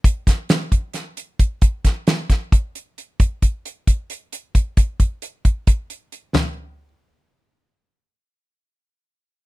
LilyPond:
\new DrumStaff \with { instrumentName = "Drums" } \drummode { \time 7/8 \tempo 4 = 133 <hh bd>8 <hh bd sn>8 <hh sn>8 <hh bd>8 <hh sn>8 hh8 <hh bd>8 | <hh bd>8 <hh bd sn>8 <hh sn>8 <hh bd sn>8 <hh bd>8 hh8 hh8 | <hh bd>8 <hh bd>8 hh8 <hh bd>8 hh8 hh8 <hh bd>8 | <hh bd>8 <hh bd>8 hh8 <hh bd>8 <hh bd>8 hh8 hh8 |
<sn tomfh>4 r4 r4. | r4 r4 r4. | }